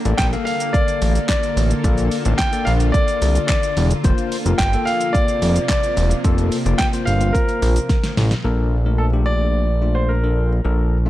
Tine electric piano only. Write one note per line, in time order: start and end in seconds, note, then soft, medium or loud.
0.05 0.26 A#3 medium
0.05 0.27 A4 medium
0.05 0.27 D5 medium
0.33 1.18 A#3 medium
0.33 1.18 A4 medium
0.33 1.18 F5 medium
1.84 2.16 A#3 medium
1.84 2.16 A4 medium
1.84 2.16 D5 loud
2.25 2.47 A#3 medium
2.25 2.47 A4 medium
2.25 2.47 D5 medium
2.53 3.38 A#3 medium
2.53 3.38 A4 medium
2.53 3.38 D5 medium
4.04 4.36 A#3 medium
4.04 4.36 F4 medium
4.04 4.36 C5 loud
4.46 4.67 A#3 medium
4.46 4.67 F4 medium
4.46 4.67 A#4 medium
4.73 5.58 A#3 medium
4.73 5.58 F4 medium
4.73 5.58 A4 medium
6.24 6.56 A#3 medium
6.24 6.56 F4 medium
6.24 6.56 A4 loud
6.66 6.87 A#3 medium
6.66 6.87 F4 medium
6.66 6.87 D5 medium
6.93 7.78 A#3 medium
6.93 7.78 F4 medium
6.93 7.78 C5 medium
8.44 8.76 D4 medium
8.44 8.76 A4 medium
8.44 8.77 A#4 medium
8.85 9.07 A3 medium
8.85 9.07 D4 medium
8.85 9.07 A#4 medium
9.13 9.66 A3 medium
9.13 9.66 D4 medium
9.13 9.67 G4 medium
9.82 10.14 A3 medium
9.82 10.14 D4 medium
9.82 10.14 F4 medium
10.24 10.56 D4 medium
10.24 10.55 A4 medium
10.24 10.56 A#4 medium
10.65 10.97 D4 medium
10.65 10.97 A4 medium
10.65 10.97 A#4 medium
11.06 11.10 A3 medium
11.06 11.10 D4 medium
11.06 11.10 F4 medium